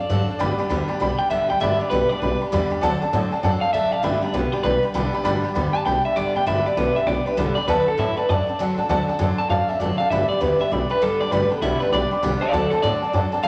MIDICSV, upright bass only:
0, 0, Header, 1, 3, 480
1, 0, Start_track
1, 0, Key_signature, 1, "major"
1, 0, Tempo, 303337
1, 633, Time_signature, 4, 2, 24, 8
1, 21329, End_track
2, 0, Start_track
2, 0, Title_t, "Upright bass"
2, 0, Program_c, 0, 32
2, 151, Note_on_c, 0, 43, 95
2, 346, Note_off_c, 0, 43, 0
2, 642, Note_on_c, 0, 31, 97
2, 833, Note_off_c, 0, 31, 0
2, 1112, Note_on_c, 0, 38, 98
2, 1306, Note_off_c, 0, 38, 0
2, 1594, Note_on_c, 0, 35, 90
2, 1787, Note_off_c, 0, 35, 0
2, 2079, Note_on_c, 0, 31, 94
2, 2270, Note_off_c, 0, 31, 0
2, 2377, Note_on_c, 0, 38, 90
2, 2492, Note_off_c, 0, 38, 0
2, 2547, Note_on_c, 0, 31, 96
2, 2742, Note_off_c, 0, 31, 0
2, 3031, Note_on_c, 0, 35, 99
2, 3225, Note_off_c, 0, 35, 0
2, 3510, Note_on_c, 0, 35, 106
2, 3703, Note_off_c, 0, 35, 0
2, 3999, Note_on_c, 0, 40, 85
2, 4189, Note_off_c, 0, 40, 0
2, 4472, Note_on_c, 0, 38, 104
2, 4665, Note_off_c, 0, 38, 0
2, 4951, Note_on_c, 0, 45, 104
2, 5144, Note_off_c, 0, 45, 0
2, 5432, Note_on_c, 0, 42, 98
2, 5624, Note_off_c, 0, 42, 0
2, 5906, Note_on_c, 0, 38, 99
2, 6100, Note_off_c, 0, 38, 0
2, 6207, Note_on_c, 0, 33, 98
2, 6325, Note_off_c, 0, 33, 0
2, 6384, Note_on_c, 0, 31, 101
2, 6579, Note_off_c, 0, 31, 0
2, 6863, Note_on_c, 0, 35, 98
2, 7058, Note_off_c, 0, 35, 0
2, 7342, Note_on_c, 0, 35, 104
2, 7538, Note_off_c, 0, 35, 0
2, 7834, Note_on_c, 0, 36, 100
2, 8026, Note_off_c, 0, 36, 0
2, 8308, Note_on_c, 0, 31, 100
2, 8501, Note_off_c, 0, 31, 0
2, 8793, Note_on_c, 0, 38, 100
2, 8985, Note_off_c, 0, 38, 0
2, 9273, Note_on_c, 0, 35, 104
2, 9465, Note_off_c, 0, 35, 0
2, 9752, Note_on_c, 0, 31, 94
2, 9944, Note_off_c, 0, 31, 0
2, 10044, Note_on_c, 0, 38, 90
2, 10163, Note_off_c, 0, 38, 0
2, 10228, Note_on_c, 0, 31, 101
2, 10422, Note_off_c, 0, 31, 0
2, 10711, Note_on_c, 0, 35, 103
2, 10904, Note_off_c, 0, 35, 0
2, 11177, Note_on_c, 0, 35, 110
2, 11375, Note_off_c, 0, 35, 0
2, 11675, Note_on_c, 0, 36, 101
2, 11867, Note_off_c, 0, 36, 0
2, 12148, Note_on_c, 0, 38, 102
2, 12343, Note_off_c, 0, 38, 0
2, 12626, Note_on_c, 0, 45, 87
2, 12822, Note_off_c, 0, 45, 0
2, 13120, Note_on_c, 0, 42, 101
2, 13311, Note_off_c, 0, 42, 0
2, 13585, Note_on_c, 0, 38, 89
2, 13781, Note_off_c, 0, 38, 0
2, 13883, Note_on_c, 0, 45, 89
2, 14004, Note_off_c, 0, 45, 0
2, 14070, Note_on_c, 0, 38, 96
2, 14265, Note_off_c, 0, 38, 0
2, 14556, Note_on_c, 0, 42, 97
2, 14749, Note_off_c, 0, 42, 0
2, 15022, Note_on_c, 0, 42, 104
2, 15220, Note_off_c, 0, 42, 0
2, 15499, Note_on_c, 0, 30, 88
2, 15698, Note_off_c, 0, 30, 0
2, 15984, Note_on_c, 0, 31, 95
2, 16181, Note_off_c, 0, 31, 0
2, 16478, Note_on_c, 0, 38, 97
2, 16671, Note_off_c, 0, 38, 0
2, 16960, Note_on_c, 0, 35, 110
2, 17152, Note_off_c, 0, 35, 0
2, 17431, Note_on_c, 0, 31, 105
2, 17626, Note_off_c, 0, 31, 0
2, 17727, Note_on_c, 0, 38, 87
2, 17847, Note_off_c, 0, 38, 0
2, 17908, Note_on_c, 0, 31, 105
2, 18104, Note_off_c, 0, 31, 0
2, 18380, Note_on_c, 0, 35, 104
2, 18578, Note_off_c, 0, 35, 0
2, 18861, Note_on_c, 0, 35, 108
2, 19059, Note_off_c, 0, 35, 0
2, 19351, Note_on_c, 0, 36, 92
2, 19546, Note_off_c, 0, 36, 0
2, 19829, Note_on_c, 0, 38, 108
2, 20024, Note_off_c, 0, 38, 0
2, 20311, Note_on_c, 0, 45, 96
2, 20505, Note_off_c, 0, 45, 0
2, 20788, Note_on_c, 0, 42, 108
2, 20983, Note_off_c, 0, 42, 0
2, 21252, Note_on_c, 0, 38, 94
2, 21329, Note_off_c, 0, 38, 0
2, 21329, End_track
3, 0, Start_track
3, 0, Title_t, "Muted upright bass strokes"
3, 936, Note_on_c, 9, 29, 66
3, 1095, Note_off_c, 9, 29, 0
3, 1407, Note_on_c, 9, 29, 69
3, 1565, Note_off_c, 9, 29, 0
3, 1889, Note_on_c, 9, 29, 69
3, 2047, Note_off_c, 9, 29, 0
3, 2847, Note_on_c, 9, 29, 67
3, 3005, Note_off_c, 9, 29, 0
3, 3328, Note_on_c, 9, 29, 69
3, 3486, Note_off_c, 9, 29, 0
3, 3820, Note_on_c, 9, 29, 81
3, 3979, Note_off_c, 9, 29, 0
3, 4292, Note_on_c, 9, 29, 74
3, 4450, Note_off_c, 9, 29, 0
3, 4772, Note_on_c, 9, 29, 72
3, 4931, Note_off_c, 9, 29, 0
3, 5249, Note_on_c, 9, 29, 75
3, 5408, Note_off_c, 9, 29, 0
3, 5721, Note_on_c, 9, 29, 76
3, 5879, Note_off_c, 9, 29, 0
3, 6682, Note_on_c, 9, 29, 77
3, 6840, Note_off_c, 9, 29, 0
3, 7170, Note_on_c, 9, 29, 76
3, 7328, Note_off_c, 9, 29, 0
3, 7651, Note_on_c, 9, 29, 76
3, 7809, Note_off_c, 9, 29, 0
3, 8136, Note_on_c, 9, 29, 74
3, 8295, Note_off_c, 9, 29, 0
3, 8606, Note_on_c, 9, 29, 73
3, 8765, Note_off_c, 9, 29, 0
3, 9089, Note_on_c, 9, 29, 70
3, 9247, Note_off_c, 9, 29, 0
3, 10532, Note_on_c, 9, 29, 74
3, 10690, Note_off_c, 9, 29, 0
3, 11011, Note_on_c, 9, 29, 67
3, 11169, Note_off_c, 9, 29, 0
3, 11481, Note_on_c, 9, 29, 73
3, 11639, Note_off_c, 9, 29, 0
3, 11971, Note_on_c, 9, 29, 76
3, 12130, Note_off_c, 9, 29, 0
3, 12452, Note_on_c, 9, 29, 75
3, 12611, Note_off_c, 9, 29, 0
3, 12945, Note_on_c, 9, 29, 70
3, 13103, Note_off_c, 9, 29, 0
3, 13407, Note_on_c, 9, 29, 73
3, 13565, Note_off_c, 9, 29, 0
3, 14376, Note_on_c, 9, 29, 65
3, 14534, Note_off_c, 9, 29, 0
3, 14856, Note_on_c, 9, 29, 70
3, 15014, Note_off_c, 9, 29, 0
3, 15320, Note_on_c, 9, 29, 75
3, 15479, Note_off_c, 9, 29, 0
3, 15812, Note_on_c, 9, 29, 75
3, 15971, Note_off_c, 9, 29, 0
3, 16296, Note_on_c, 9, 29, 65
3, 16455, Note_off_c, 9, 29, 0
3, 16769, Note_on_c, 9, 29, 75
3, 16928, Note_off_c, 9, 29, 0
3, 17248, Note_on_c, 9, 29, 72
3, 17406, Note_off_c, 9, 29, 0
3, 18195, Note_on_c, 9, 29, 74
3, 18353, Note_off_c, 9, 29, 0
3, 18680, Note_on_c, 9, 29, 71
3, 18838, Note_off_c, 9, 29, 0
3, 19165, Note_on_c, 9, 29, 67
3, 19323, Note_off_c, 9, 29, 0
3, 19647, Note_on_c, 9, 29, 71
3, 19805, Note_off_c, 9, 29, 0
3, 20133, Note_on_c, 9, 29, 79
3, 20291, Note_off_c, 9, 29, 0
3, 20602, Note_on_c, 9, 29, 73
3, 20760, Note_off_c, 9, 29, 0
3, 21081, Note_on_c, 9, 29, 73
3, 21239, Note_off_c, 9, 29, 0
3, 21329, End_track
0, 0, End_of_file